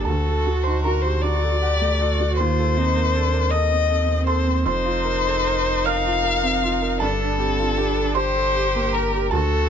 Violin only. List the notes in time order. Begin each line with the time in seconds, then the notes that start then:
0.05 A4
0.63 C5
0.84 A#4
1.02 C5
1.21 D5
2.36 C5
3.50 D#5
4.26 C5
4.66 C5
5.86 F5
7.01 A4
8.16 C5
8.94 A#4
9.32 A4